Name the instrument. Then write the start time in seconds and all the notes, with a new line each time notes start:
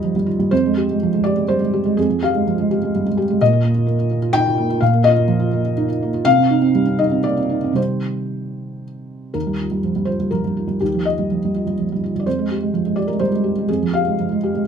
felt piano
Already playing: D#2 F3 G3 F4 G4 D#5
0.04 F3
0.16 G3
0.26 F4
0.39 G3
0.51 F2 C5
0.66 G#3
0.77 G4
0.91 G#3
1.03 F3
1.14 G#3
1.24 G4 D5
1.37 G#3
1.48 G3 C5
1.60 G#3
1.73 G4
1.85 G#3
1.97 F2 G#4
2.09 F3
2.23 G4 F5
2.35 G#3
2.47 F3
2.59 G#3
2.71 G4
2.83 G#3
2.95 G3
3.06 G#3
3.17 G4
3.30 G#3
3.41 A#2 D#5
3.53 F4
3.64 A#3
3.75 F4
3.87 A#3
3.99 F4
4.11 A#3
4.22 F4
4.33 D#4 G5
4.46 F4
4.58 A#3
4.70 F4
4.81 A#2 F5
4.93 A#3
5.04 F4 D#5
5.16 A#3
5.28 F3
5.40 F4
5.53 A#3
5.65 F4
5.77 D#4
5.88 F4
6.02 A#3
6.14 F4
6.25 C3 F5
6.38 C4
6.50 D#4
6.62 C4
6.75 G3
6.86 C4
6.99 D#4 D#5
7.11 C4
7.24 A#3 D5
7.36 C4
7.49 D#4
7.64 C4
7.72 C3 D#3 G3 C4 C5
9.34 D#2 A#4
9.47 G3
9.59 F4
9.71 G3
9.84 F3
9.96 G3
10.05 F4 C5
10.20 G3
10.31 F3 A#4
10.44 G3
10.57 F4
10.67 G3
10.81 D#2 G4
10.94 F3
11.05 F4 D#5
11.19 G3
11.31 F3
11.45 G3
11.56 F4
11.67 G3
11.79 F3
11.92 G3
12.04 F4
12.15 G3
12.20 D5
12.26 F2 C5
12.39 G#3
12.51 G4
12.63 G#3
12.74 F3
12.86 G#3
12.96 G4 D5
13.07 G#3 A#4
13.20 G3 C5
13.32 G#3
13.44 G4
13.58 G#3
13.69 F2 G#4
13.83 F3
13.94 G4 F5
14.07 G#3
14.20 F3
14.32 G#3
14.43 G4
14.54 G#3